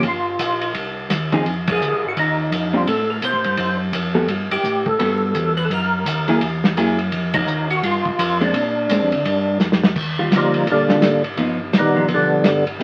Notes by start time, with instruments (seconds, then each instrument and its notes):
0.03 tonewheel organ G1, kick, ride
0.07 tonewheel organ F4
0.39 tonewheel organ A#1, kick, hi-hat pedal, ride
0.61 ride
0.74 tonewheel organ C2, kick, ride
1.10 tonewheel organ D#2, kick, snare, hi-hat pedal, ride
1.32 hollow-body jazz guitar F3 C4 D#4 G#4, kick, ride
1.46 tonewheel organ F2, kick, ride
1.68 tonewheel organ G#4, kick, ride
1.80 tonewheel organ D2, hi-hat pedal
1.92 tonewheel organ C2
2.04 tonewheel organ G#1
2.08 tonewheel organ F#4
2.17 tonewheel organ D#2 D#4, kick, ride
2.51 tonewheel organ F2, kick, hi-hat pedal, ride
2.73 hollow-body jazz guitar G3 C4 D4, tonewheel organ F4
2.87 tonewheel organ A2 A4, kick, ride
3.10 tonewheel organ A#4
3.22 tonewheel organ B2 C5, kick, hi-hat pedal, ride
3.33 tonewheel organ A2
3.44 tonewheel organ G2, ride
3.57 tonewheel organ F#2, kick, ride
3.93 tonewheel organ F2, kick, hi-hat pedal, ride
4.14 hollow-body jazz guitar G3 B3 F#4 A4
4.28 tonewheel organ G2, kick, ride
4.51 tonewheel organ G2 G4, ride
4.63 tonewheel organ A2, kick, hi-hat pedal
4.86 tonewheel organ A4, kick
4.99 tonewheel organ G2, hollow-body jazz guitar G3 B3 F#4 A4, kick, ride
5.34 tonewheel organ E2, kick, hi-hat pedal, ride
5.57 tonewheel organ B4, ride
5.65 tonewheel organ A4
5.70 tonewheel organ F#2 A#4, kick, ride
6.05 tonewheel organ D#2, kick, hi-hat pedal, ride
6.28 hollow-body jazz guitar F#3 A#3 E4 G#4, ride
6.41 tonewheel organ E2, kick, ride
6.64 snare
6.76 tonewheel organ F#2, hollow-body jazz guitar F#3 A#3 E4 G#4, kick, hi-hat pedal, ride
6.99 ride
7.12 tonewheel organ F2, kick, ride
7.34 tonewheel organ D#4, kick, ride
7.46 tonewheel organ D#2, hi-hat pedal
7.70 tonewheel organ F#4, ride
7.83 tonewheel organ G2 F4, kick, ride
8.05 tonewheel organ G2, kick
8.18 tonewheel organ F2, kick, hi-hat pedal, ride
8.41 hollow-body jazz guitar G#3 C4 D4, tonewheel organ D4, ride
8.54 tonewheel organ A#2, kick, ride
8.89 tonewheel organ G#2, hollow-body jazz guitar G#3 C4 D4, kick, hi-hat pedal, ride
9.02 tonewheel organ F2
9.12 tonewheel organ D2, ride
9.24 tonewheel organ G2, kick, ride
9.60 tonewheel organ F2, snare, hi-hat pedal
9.72 snare
9.83 snare
9.95 tonewheel organ D#2, kick, crash
10.19 hollow-body jazz guitar G3 F4
10.31 tonewheel organ D2, kick, snare, hi-hat pedal, ride
10.36 tonewheel organ F3 G3 A#3 D#4
10.54 ride
10.66 tonewheel organ A#1, kick, ride
10.71 tonewheel organ D3 G3 A#3 D4
10.89 hollow-body jazz guitar D#3 G3 D4 F4, snare
11.01 tonewheel organ G#1, kick, snare, hi-hat pedal, ride
11.24 ride
11.37 tonewheel organ G1, hollow-body jazz guitar F3 B3 D#4, kick, ride
11.72 tonewheel organ A#1, kick, snare, hi-hat pedal, ride
11.78 tonewheel organ D#3 G3 B3 D#4
11.96 hollow-body jazz guitar F3 B3
12.08 tonewheel organ B1, kick, ride
12.14 tonewheel organ D3 G3 B3 D4
12.44 tonewheel organ G1, kick, snare, hi-hat pedal, ride
12.67 ride
12.79 tonewheel organ C2, hollow-body jazz guitar G3, kick